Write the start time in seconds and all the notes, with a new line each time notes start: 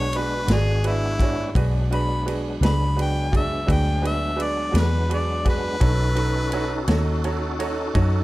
Already playing: B1 G#3 B3 D4 F#4 C#5
0.13 D4 F#4 G#4 B4, ride
0.48 G#1 D4 F#4 G#4 D5, snare, ride
0.53 G#4
0.84 D4 E4 F#4 G#4 B4, ride
1.19 D4 F#4 G#4 C#5, kick, ride
1.55 B1 F#3 G#3 B3 D4 F#4 G#4 B4, kick, ride
1.91 D4 F#4 G#4 B4 B5, ride
2.26 D4 F#4 G#4 B4, ride
2.61 C#2 D4 F#4 G#4 B4 B5, snare, ride
2.96 D4 F#4 G#4 B4, ride
3.01 G5
3.32 D4 F#4 G#4 D5, kick, ride
3.36 E5
3.66 D2 D4 F#4 G#4 B4, kick, ride
3.72 G5
4.01 D4 F#4 G#4 B4, ride
4.07 E5
4.36 D4 F#4 G#4 B4, ride
4.42 D5
4.72 E2 D4 F#4 G#4 B4, ride
4.77 B4, snare
5.09 D4 F#4 G#4 B4, ride
5.13 D5
5.44 D4 F#4 G#4 B4, kick, ride
5.49 B4
5.80 B1 C#4 D#4 F#4 A4 C#5, kick, ride
6.15 D#4 F#4 A4 B4, ride
6.52 D#4 F#4 A4 C#5, ride
6.88 D#2 D#4 F#4 A4 C#5, snare, ride
7.24 D#4 F#4 A4 C#5, ride
7.59 D#4 F#4 A4 C#5, ride
7.94 F#2 D#4 F#4 A4 C#5, kick, ride